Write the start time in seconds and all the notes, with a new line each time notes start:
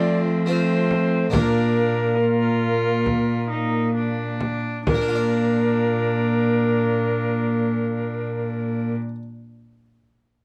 Already playing: F3 A3 C4 F4 D5
0.46 A3 C4 F4 C5
0.91 frame drum
1.30 A#2 A#3 D4 F4 A#4 D5, frame drum
2.18 F4
3.06 frame drum
3.50 D#4
3.95 D4
4.41 frame drum
4.87 A#2 A#3 D4 A#4, frame drum
4.94 A#3
5.01 D4
5.08 F4
5.15 D5